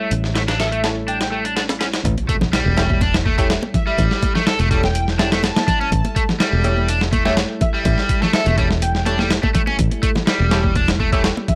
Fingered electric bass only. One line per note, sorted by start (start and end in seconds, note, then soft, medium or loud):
0.11 2.02 A1 medium
2.05 2.14 A1 loud
2.66 3.57 E1 medium
3.99 4.07 A1 medium
4.59 5.50 E1 medium
5.92 6.01 A1 loud
6.53 7.44 E1 medium
7.85 7.94 A1 loud
8.47 9.37 E1 medium
9.79 9.88 A1 loud
10.40 11.31 E1 medium